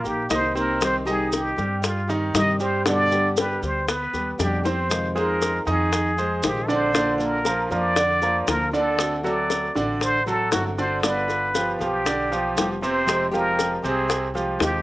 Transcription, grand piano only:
0.00 0.21 A#3 medium
0.00 0.21 A#4 medium
0.30 0.51 D#4 medium
0.30 0.51 D#5 medium
0.55 0.97 C4 medium
0.55 0.98 C5 medium
1.07 1.49 D#4 medium
1.07 1.49 D#5 medium
1.58 2.00 G3 medium
1.58 2.00 G4 medium
2.09 2.51 D#3 medium
2.09 2.51 D#4 medium
2.60 2.81 G3 medium
2.60 2.81 G4 medium
2.86 3.28 D3 medium
2.86 3.28 D4 medium
3.37 3.79 G3 medium
3.37 3.79 G4 medium
3.88 4.30 B3 medium
3.88 4.30 B4 medium
4.39 4.60 D4 medium
4.39 4.61 D5 medium
4.65 4.86 C4 medium
4.65 4.86 C5 medium
5.15 5.58 G#3 medium
5.15 5.58 G#4 medium
5.15 5.58 C5 medium
5.66 6.09 D#3 medium
5.66 6.09 D#4 medium
5.66 6.09 D#5 medium
6.18 6.60 G#3 medium
6.18 6.60 G#4 medium
6.18 6.60 C5 medium
6.68 6.90 D3 medium
6.68 6.90 D4 medium
6.68 6.90 D5 medium
6.95 7.37 D3 medium
6.95 7.37 D4 medium
6.95 7.37 D5 medium
7.46 7.67 F3 medium
7.46 7.67 F4 medium
7.46 7.67 A#4 medium
7.71 7.92 F3 medium
7.71 7.92 F4 medium
7.71 7.93 A#4 medium
7.97 8.18 D3 medium
7.97 8.18 D4 medium
7.97 8.18 D5 medium
8.22 8.64 F3 medium
8.22 8.65 F4 medium
8.22 8.65 A#4 medium
8.73 9.15 D3 medium
8.73 9.16 D4 medium
8.73 9.16 D5 medium
9.24 9.66 F#3 medium
9.24 9.66 F#4 medium
9.24 9.67 A4 medium
9.76 10.17 D3 medium
9.76 10.18 D4 medium
9.76 10.18 D5 medium
10.27 10.69 F#3 medium
10.27 10.69 F#4 medium
10.27 10.69 A4 medium
10.78 10.99 D3 medium
10.78 10.99 D4 medium
10.78 10.99 D5 medium
11.04 11.46 D3 medium
11.04 11.46 D4 medium
11.04 11.46 D5 medium
11.55 11.76 F3 medium
11.55 11.76 F4 medium
11.55 11.76 G4 medium
11.80 12.01 F3 medium
11.80 12.01 F4 medium
11.80 12.01 G4 medium
12.06 12.27 D3 medium
12.06 12.27 D4 medium
12.06 12.27 D5 medium
12.32 12.73 F3 medium
12.32 12.73 F4 medium
12.32 12.73 G4 medium
12.82 13.24 C3 medium
12.82 13.24 C4 medium
12.82 13.24 C5 medium
13.33 13.75 F3 medium
13.33 13.75 F4 medium
13.33 13.75 G4 medium
13.84 14.26 C3 medium
13.84 14.26 C4 medium
13.84 14.26 C5 medium
14.35 14.77 F3 medium
14.35 14.77 F4 medium
14.35 14.77 G4 medium

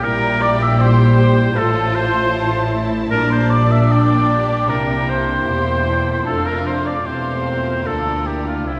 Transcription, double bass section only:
0.02 1.51 A#1 medium
1.56 3.08 A1 medium
3.11 4.69 A#1 medium
4.69 5.47 C2 medium
5.48 6.25 E1 medium
6.27 7.05 F1 medium
7.07 7.84 E1 medium
7.86 8.67 D2 medium
8.67 8.80 C2 soft

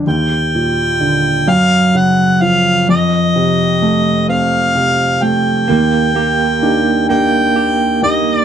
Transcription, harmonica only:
0.07 1.51 G5 medium
1.49 1.98 F5 medium
1.97 2.44 F#5 medium
2.42 2.88 F5 medium
2.90 4.25 D#5 medium
4.29 5.24 F5 medium
5.23 7.08 G5 medium
7.09 7.98 G5 medium
8.03 8.35 D#5 medium
8.35 8.45 D5 medium

